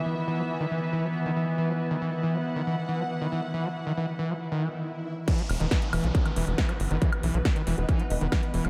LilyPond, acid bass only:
\new Staff \with { instrumentName = "Acid bass" } { \clef bass \time 4/4 \key c \lydian \tempo 4 = 138 e16 r16 e16 fis16 r16 dis16 e16 r16 e16 fis16 r16 dis16 e16 r16 e16 fis16 | r16 dis16 e16 r16 e16 fis16 r16 dis16 e16 r16 e16 fis16 r16 dis16 e16 r16 | e16 fis16 r16 dis16 e16 r16 e16 fis16 r16 dis16 e16 r4 r16 | e16 fis16 r16 dis16 e16 r16 e16 fis16 r16 dis16 e16 r16 e16 fis16 r16 dis16 |
e16 r16 e16 fis16 r16 dis16 e16 r16 e16 fis16 r16 dis16 e16 r16 e16 fis16 | }